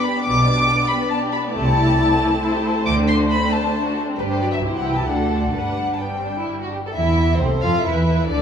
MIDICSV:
0, 0, Header, 1, 6, 480
1, 0, Start_track
1, 0, Key_signature, 1, "major"
1, 0, Tempo, 435414
1, 279, Time_signature, 3, 2, 24, 8
1, 4118, Tempo, 448766
1, 5558, Tempo, 467654
1, 7478, Tempo, 445765
1, 9056, End_track
2, 0, Start_track
2, 0, Title_t, "Violin section"
2, 0, Program_c, 0, 48
2, 22, Note_on_c, 0, 83, 69
2, 260, Note_on_c, 0, 86, 85
2, 271, Note_off_c, 0, 83, 0
2, 966, Note_off_c, 0, 86, 0
2, 978, Note_on_c, 0, 83, 72
2, 1221, Note_on_c, 0, 81, 73
2, 1224, Note_off_c, 0, 83, 0
2, 1310, Note_off_c, 0, 81, 0
2, 1460, Note_on_c, 0, 83, 68
2, 1548, Note_off_c, 0, 83, 0
2, 1708, Note_on_c, 0, 81, 96
2, 3121, Note_off_c, 0, 81, 0
2, 3150, Note_on_c, 0, 86, 86
2, 3238, Note_off_c, 0, 86, 0
2, 3397, Note_on_c, 0, 84, 70
2, 3485, Note_off_c, 0, 84, 0
2, 3628, Note_on_c, 0, 83, 79
2, 3866, Note_off_c, 0, 83, 0
2, 3873, Note_on_c, 0, 81, 69
2, 4356, Note_off_c, 0, 81, 0
2, 4595, Note_on_c, 0, 71, 72
2, 4643, Note_off_c, 0, 71, 0
2, 4724, Note_on_c, 0, 72, 57
2, 4838, Note_off_c, 0, 72, 0
2, 4839, Note_on_c, 0, 74, 58
2, 4886, Note_off_c, 0, 74, 0
2, 4959, Note_on_c, 0, 76, 57
2, 5045, Note_off_c, 0, 76, 0
2, 5209, Note_on_c, 0, 78, 53
2, 5320, Note_off_c, 0, 78, 0
2, 5321, Note_on_c, 0, 79, 57
2, 5432, Note_on_c, 0, 81, 48
2, 5439, Note_off_c, 0, 79, 0
2, 5552, Note_on_c, 0, 78, 53
2, 5556, Note_off_c, 0, 81, 0
2, 6008, Note_off_c, 0, 78, 0
2, 6021, Note_on_c, 0, 78, 65
2, 6425, Note_off_c, 0, 78, 0
2, 6435, Note_on_c, 0, 81, 29
2, 6504, Note_on_c, 0, 79, 49
2, 6513, Note_off_c, 0, 81, 0
2, 6990, Note_off_c, 0, 79, 0
2, 7470, Note_on_c, 0, 76, 74
2, 7927, Note_off_c, 0, 76, 0
2, 7958, Note_on_c, 0, 72, 66
2, 8192, Note_on_c, 0, 77, 69
2, 8203, Note_off_c, 0, 72, 0
2, 8437, Note_off_c, 0, 77, 0
2, 8438, Note_on_c, 0, 76, 60
2, 8902, Note_on_c, 0, 74, 76
2, 8915, Note_off_c, 0, 76, 0
2, 9056, Note_off_c, 0, 74, 0
2, 9056, End_track
3, 0, Start_track
3, 0, Title_t, "Viola section"
3, 0, Program_c, 1, 48
3, 0, Note_on_c, 1, 59, 44
3, 0, Note_on_c, 1, 62, 43
3, 1668, Note_off_c, 1, 62, 0
3, 1669, Note_off_c, 1, 59, 0
3, 1709, Note_on_c, 1, 64, 56
3, 1710, Note_on_c, 1, 57, 54
3, 3121, Note_off_c, 1, 64, 0
3, 3150, Note_on_c, 1, 62, 53
3, 4551, Note_off_c, 1, 57, 0
3, 4566, Note_off_c, 1, 62, 0
3, 4590, Note_on_c, 1, 55, 48
3, 4590, Note_on_c, 1, 62, 48
3, 4816, Note_off_c, 1, 55, 0
3, 4832, Note_on_c, 1, 54, 43
3, 5040, Note_off_c, 1, 62, 0
3, 5074, Note_off_c, 1, 54, 0
3, 5077, Note_on_c, 1, 52, 46
3, 5078, Note_on_c, 1, 64, 43
3, 5549, Note_off_c, 1, 64, 0
3, 5554, Note_on_c, 1, 57, 40
3, 5558, Note_off_c, 1, 52, 0
3, 5558, Note_on_c, 1, 62, 38
3, 6016, Note_off_c, 1, 62, 0
3, 6023, Note_off_c, 1, 57, 0
3, 6028, Note_on_c, 1, 62, 37
3, 6029, Note_on_c, 1, 55, 37
3, 6500, Note_off_c, 1, 55, 0
3, 6501, Note_off_c, 1, 62, 0
3, 6512, Note_on_c, 1, 55, 38
3, 6513, Note_on_c, 1, 62, 37
3, 7247, Note_off_c, 1, 55, 0
3, 7247, Note_off_c, 1, 62, 0
3, 7962, Note_on_c, 1, 69, 53
3, 8409, Note_off_c, 1, 69, 0
3, 8445, Note_on_c, 1, 71, 54
3, 8913, Note_on_c, 1, 69, 58
3, 8918, Note_off_c, 1, 71, 0
3, 9056, Note_off_c, 1, 69, 0
3, 9056, End_track
4, 0, Start_track
4, 0, Title_t, "Violin section"
4, 0, Program_c, 2, 48
4, 0, Note_on_c, 2, 74, 34
4, 41, Note_on_c, 2, 67, 44
4, 152, Note_on_c, 2, 62, 45
4, 160, Note_off_c, 2, 67, 0
4, 242, Note_off_c, 2, 74, 0
4, 265, Note_on_c, 2, 74, 47
4, 267, Note_on_c, 2, 55, 47
4, 275, Note_off_c, 2, 62, 0
4, 383, Note_off_c, 2, 55, 0
4, 383, Note_on_c, 2, 59, 42
4, 501, Note_on_c, 2, 62, 43
4, 509, Note_off_c, 2, 59, 0
4, 621, Note_on_c, 2, 67, 41
4, 627, Note_off_c, 2, 62, 0
4, 731, Note_on_c, 2, 62, 46
4, 746, Note_off_c, 2, 67, 0
4, 851, Note_on_c, 2, 59, 49
4, 860, Note_off_c, 2, 62, 0
4, 974, Note_on_c, 2, 55, 46
4, 980, Note_off_c, 2, 59, 0
4, 1089, Note_on_c, 2, 59, 47
4, 1102, Note_off_c, 2, 55, 0
4, 1210, Note_on_c, 2, 62, 51
4, 1220, Note_off_c, 2, 59, 0
4, 1331, Note_on_c, 2, 67, 47
4, 1341, Note_off_c, 2, 62, 0
4, 1457, Note_on_c, 2, 62, 47
4, 1462, Note_off_c, 2, 67, 0
4, 1574, Note_on_c, 2, 59, 45
4, 1586, Note_off_c, 2, 62, 0
4, 1701, Note_on_c, 2, 57, 52
4, 1704, Note_off_c, 2, 59, 0
4, 1813, Note_on_c, 2, 60, 45
4, 1818, Note_off_c, 2, 57, 0
4, 1940, Note_on_c, 2, 64, 49
4, 1943, Note_off_c, 2, 60, 0
4, 2065, Note_off_c, 2, 64, 0
4, 2066, Note_on_c, 2, 67, 46
4, 2180, Note_on_c, 2, 64, 49
4, 2188, Note_off_c, 2, 67, 0
4, 2297, Note_on_c, 2, 60, 48
4, 2305, Note_off_c, 2, 64, 0
4, 2404, Note_on_c, 2, 57, 48
4, 2424, Note_off_c, 2, 60, 0
4, 2529, Note_on_c, 2, 60, 48
4, 2538, Note_off_c, 2, 57, 0
4, 2621, Note_off_c, 2, 74, 0
4, 2660, Note_on_c, 2, 72, 59
4, 2661, Note_off_c, 2, 60, 0
4, 2661, Note_on_c, 2, 64, 52
4, 2779, Note_on_c, 2, 67, 49
4, 2787, Note_off_c, 2, 64, 0
4, 2906, Note_off_c, 2, 67, 0
4, 2909, Note_on_c, 2, 64, 47
4, 3018, Note_on_c, 2, 60, 46
4, 3031, Note_off_c, 2, 64, 0
4, 3137, Note_on_c, 2, 57, 45
4, 3145, Note_off_c, 2, 60, 0
4, 3256, Note_off_c, 2, 57, 0
4, 3268, Note_on_c, 2, 60, 48
4, 3378, Note_on_c, 2, 62, 46
4, 3390, Note_off_c, 2, 60, 0
4, 3505, Note_off_c, 2, 62, 0
4, 3505, Note_on_c, 2, 66, 44
4, 3623, Note_on_c, 2, 62, 47
4, 3628, Note_off_c, 2, 66, 0
4, 3747, Note_off_c, 2, 62, 0
4, 3749, Note_on_c, 2, 60, 51
4, 3864, Note_on_c, 2, 57, 48
4, 3872, Note_off_c, 2, 60, 0
4, 3991, Note_off_c, 2, 57, 0
4, 3991, Note_on_c, 2, 60, 43
4, 4108, Note_on_c, 2, 62, 48
4, 4115, Note_off_c, 2, 60, 0
4, 4232, Note_off_c, 2, 62, 0
4, 4242, Note_on_c, 2, 66, 45
4, 4359, Note_off_c, 2, 66, 0
4, 4360, Note_on_c, 2, 62, 46
4, 4477, Note_off_c, 2, 62, 0
4, 4486, Note_on_c, 2, 60, 42
4, 4590, Note_off_c, 2, 72, 0
4, 4601, Note_off_c, 2, 60, 0
4, 4609, Note_on_c, 2, 67, 45
4, 4611, Note_on_c, 2, 71, 43
4, 5050, Note_off_c, 2, 67, 0
4, 5051, Note_off_c, 2, 71, 0
4, 5087, Note_on_c, 2, 72, 44
4, 5088, Note_on_c, 2, 67, 45
4, 5173, Note_off_c, 2, 72, 0
4, 5324, Note_on_c, 2, 71, 39
4, 5554, Note_off_c, 2, 67, 0
4, 5557, Note_off_c, 2, 71, 0
4, 5559, Note_on_c, 2, 69, 39
4, 5560, Note_on_c, 2, 62, 39
4, 6026, Note_off_c, 2, 69, 0
4, 6031, Note_off_c, 2, 62, 0
4, 6043, Note_on_c, 2, 62, 34
4, 6043, Note_on_c, 2, 71, 34
4, 6509, Note_on_c, 2, 59, 41
4, 6511, Note_off_c, 2, 62, 0
4, 6520, Note_off_c, 2, 71, 0
4, 6559, Note_off_c, 2, 59, 0
4, 6642, Note_on_c, 2, 60, 37
4, 6750, Note_on_c, 2, 62, 41
4, 6757, Note_off_c, 2, 60, 0
4, 6800, Note_off_c, 2, 62, 0
4, 6882, Note_on_c, 2, 64, 39
4, 7116, Note_off_c, 2, 64, 0
4, 7118, Note_on_c, 2, 66, 39
4, 7236, Note_on_c, 2, 67, 41
4, 7237, Note_off_c, 2, 66, 0
4, 7285, Note_off_c, 2, 67, 0
4, 7376, Note_on_c, 2, 69, 38
4, 7420, Note_off_c, 2, 69, 0
4, 7484, Note_on_c, 2, 64, 54
4, 7935, Note_off_c, 2, 64, 0
4, 7963, Note_on_c, 2, 60, 55
4, 8050, Note_off_c, 2, 60, 0
4, 8189, Note_on_c, 2, 65, 58
4, 8431, Note_off_c, 2, 65, 0
4, 8441, Note_on_c, 2, 64, 49
4, 8907, Note_off_c, 2, 64, 0
4, 8912, Note_on_c, 2, 62, 58
4, 9056, Note_off_c, 2, 62, 0
4, 9056, End_track
5, 0, Start_track
5, 0, Title_t, "Cello section"
5, 0, Program_c, 3, 48
5, 277, Note_on_c, 3, 47, 59
5, 673, Note_off_c, 3, 47, 0
5, 1713, Note_on_c, 3, 48, 63
5, 2111, Note_off_c, 3, 48, 0
5, 3154, Note_on_c, 3, 50, 64
5, 3552, Note_off_c, 3, 50, 0
5, 4596, Note_on_c, 3, 43, 52
5, 5043, Note_off_c, 3, 43, 0
5, 5073, Note_on_c, 3, 48, 47
5, 5552, Note_on_c, 3, 50, 39
5, 5556, Note_off_c, 3, 48, 0
5, 6023, Note_off_c, 3, 50, 0
5, 6035, Note_on_c, 3, 43, 40
5, 7264, Note_off_c, 3, 43, 0
5, 7476, Note_on_c, 3, 52, 60
5, 7930, Note_off_c, 3, 52, 0
5, 7965, Note_on_c, 3, 48, 57
5, 8206, Note_off_c, 3, 48, 0
5, 8206, Note_on_c, 3, 53, 54
5, 8292, Note_off_c, 3, 53, 0
5, 8442, Note_on_c, 3, 52, 47
5, 8907, Note_off_c, 3, 52, 0
5, 8921, Note_on_c, 3, 50, 58
5, 9056, Note_off_c, 3, 50, 0
5, 9056, End_track
6, 0, Start_track
6, 0, Title_t, "Double bass section"
6, 0, Program_c, 4, 48
6, 272, Note_on_c, 4, 35, 53
6, 671, Note_off_c, 4, 35, 0
6, 1711, Note_on_c, 4, 36, 61
6, 2110, Note_off_c, 4, 36, 0
6, 3144, Note_on_c, 4, 38, 59
6, 3547, Note_off_c, 4, 38, 0
6, 4594, Note_on_c, 4, 31, 50
6, 5042, Note_off_c, 4, 31, 0
6, 5069, Note_on_c, 4, 36, 46
6, 5544, Note_on_c, 4, 38, 41
6, 5554, Note_off_c, 4, 36, 0
6, 6018, Note_off_c, 4, 38, 0
6, 6027, Note_on_c, 4, 31, 36
6, 7260, Note_off_c, 4, 31, 0
6, 7470, Note_on_c, 4, 40, 58
6, 7927, Note_off_c, 4, 40, 0
6, 7956, Note_on_c, 4, 36, 63
6, 8201, Note_off_c, 4, 36, 0
6, 8205, Note_on_c, 4, 41, 59
6, 8291, Note_off_c, 4, 41, 0
6, 8445, Note_on_c, 4, 40, 46
6, 8909, Note_off_c, 4, 40, 0
6, 8914, Note_on_c, 4, 38, 60
6, 9056, Note_off_c, 4, 38, 0
6, 9056, End_track
0, 0, End_of_file